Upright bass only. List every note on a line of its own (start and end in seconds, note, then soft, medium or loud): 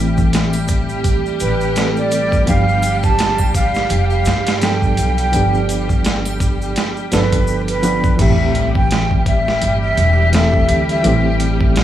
0.00 1.02 A1 medium
1.41 2.45 A1 medium
2.48 3.87 G1 loud
3.91 4.22 F1 medium
4.26 4.95 G2 medium
4.98 5.30 B1 medium
5.34 6.73 G1 loud
7.12 8.16 G1 medium
8.19 9.59 A1 loud
9.62 9.94 G1 medium
9.97 10.66 E1 medium
10.69 11.01 D2 medium
11.05 11.84 A1 loud